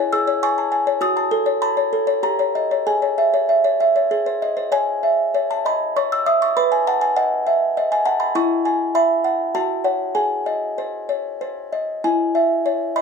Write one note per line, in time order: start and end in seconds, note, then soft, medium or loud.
0.00 0.98 E4 medium
0.00 0.21 C#5 medium
0.13 0.37 G#4 medium
0.13 0.41 E6 loud
0.27 0.51 C#5 medium
0.43 0.67 G#5 medium
0.43 1.00 C#6 loud
0.58 0.72 A5 medium
0.72 0.96 G#5 medium
0.87 1.02 C#5 medium
1.01 2.19 F#4 medium
1.01 1.59 D#6 loud
1.17 1.41 A5 medium
1.31 1.56 A4 medium
1.46 1.71 C#5 medium
1.62 1.86 A5 medium
1.62 2.21 B5 loud
1.77 2.02 C#5 medium
1.93 2.17 A4 medium
2.07 2.23 C#5 medium
2.23 2.84 G4 medium
2.23 2.84 A#5 medium
2.39 2.64 C#5 medium
2.55 2.80 D#5 medium
2.71 2.87 C#5 medium
2.87 4.08 G#4 medium
2.87 4.40 G#5 medium
3.02 3.27 C#5 medium
3.18 3.43 E5 medium
3.34 3.59 C#5 soft
3.49 3.74 E5 medium
3.64 3.90 C#5 soft
3.80 4.06 E5 medium
3.96 4.12 C#5 soft
4.11 4.72 G#4 medium
4.26 4.52 C5 soft
4.42 4.68 D#5 medium
4.57 4.73 C5 soft
4.72 5.33 C#5 medium
4.72 5.47 G#5 medium
5.03 5.53 E5 soft
5.34 5.84 C#5 medium
5.51 5.66 A5 medium
5.65 5.96 D#5 soft
5.65 5.95 B5 medium
5.96 6.45 C#5 medium
5.96 6.12 C#6 medium
6.12 6.27 E6 medium
6.26 6.57 E5 medium
6.26 6.42 D#6 loud
6.42 6.57 C#6 medium
6.57 8.30 B4 medium
6.57 6.72 B5 loud
6.72 6.87 G#5 medium
6.87 7.15 F#5 medium
6.87 7.02 A5 medium
7.01 7.17 G#5 medium
7.16 7.64 D#5 medium
7.16 7.88 F#5 medium
7.47 7.76 E5 medium
7.77 8.24 D#5 medium
7.92 8.06 G#5 medium
8.05 8.35 F#5 medium
8.05 8.20 A5 medium
8.20 8.35 B5 medium
8.35 9.50 E4 medium
8.35 8.92 C#6 loud
8.65 9.12 G#5 medium
8.95 9.42 E5 medium
8.95 9.52 B5 medium
9.24 9.54 F#5 soft
9.55 10.14 F#4 medium
9.55 10.13 A5 medium
9.84 10.12 C#5 soft
9.84 10.12 F#5 soft
10.15 11.99 G#4 medium
10.15 11.68 G#5 medium
10.46 10.96 D#5 soft
10.78 11.28 C5 soft
11.09 11.40 C#5 soft
11.41 11.91 C5 soft
11.72 12.04 D#5 soft
12.04 13.02 E4 medium
12.04 12.92 G#5 medium
12.35 12.83 E5 soft
12.66 13.02 C#5 soft
12.96 13.02 D#5 soft
12.96 13.02 B5 medium